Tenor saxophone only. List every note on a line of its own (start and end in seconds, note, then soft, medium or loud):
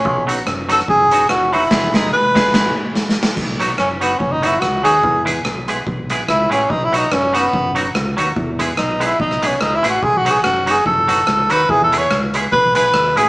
0.00 0.25 C#4 medium
0.72 0.80 A4 medium
0.89 1.27 G#4 medium
1.29 1.54 F#4 medium
1.53 1.97 E4 medium
1.95 2.12 D#4 medium
2.13 2.73 B4 loud
3.79 3.89 C#4 medium
4.01 4.20 B3 medium
4.18 4.33 C#4 medium
4.32 4.47 D#4 medium
4.46 4.61 E4 medium
4.59 4.83 F#4 medium
4.84 5.23 G#4 medium
6.29 6.50 E4 loud
6.52 6.72 C#4 medium
6.70 6.86 D#4 loud
6.84 6.97 E4 loud
6.97 7.15 D#4 medium
7.13 7.37 C#4 medium
7.35 7.76 B3 medium
8.78 9.07 D#4 medium
9.06 9.20 E4 medium
9.20 9.49 D#4 medium
9.47 9.61 C#4 medium
9.61 9.76 D#4 medium
9.75 9.89 E4 loud
9.89 10.04 F#4 medium
10.03 10.19 G#4 medium
10.17 10.32 F#4 loud
10.30 10.42 G#4 medium
10.43 10.72 F#4 medium
10.71 10.85 G#4 medium
10.86 11.52 A4 loud
11.51 11.72 B4 loud
11.70 11.83 G#4 loud
11.84 11.99 A4 loud
11.98 12.19 C#5 medium
12.52 12.74 B4 loud
12.76 13.19 B4 loud
13.17 13.29 G#4 medium